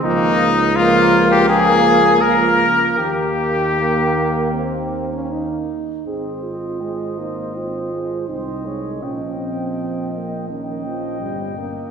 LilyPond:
<<
  \new Staff \with { instrumentName = "Trumpet" } { \time 4/4 \key aes \major \tempo 4 = 81 ees'4 f'8. g'16 aes'4 bes'4 | g'2. r4 | ees''2. ees''4 | g''2 g''2 | }
  \new Staff \with { instrumentName = "Flugelhorn" } { \time 4/4 \key aes \major bes8 r8 bes4 bes4 bes4 | bes2.~ bes8 r8 | c''2. c''8 des''8 | ees''2 ees''2 | }
  \new Staff \with { instrumentName = "Euphonium" } { \time 4/4 \key aes \major f8 r8 f4 f4 f4 | ees2.~ ees8 r8 | aes'8 f'4 ees'8 f'4 ees'4 | des'8 c'4 bes8 des'4. r8 | }
  \new Staff \with { instrumentName = "French horn" } { \time 4/4 \key aes \major bes8 r8 bes4 bes4 bes4 | bes4 bes4 c'8. des'16 ees'4 | c'4 aes8 bes8 c'8 aes8 c'8 aes8 | f2 ees8 f8 g8 bes8 | }
  \new Staff \with { instrumentName = "Tuba" } { \clef bass \time 4/4 \key aes \major des,2.~ des,8 r8 | ees,2.~ ees,8 r8 | aes,,2. c,4 | bes,,2. g,,4 | }
>>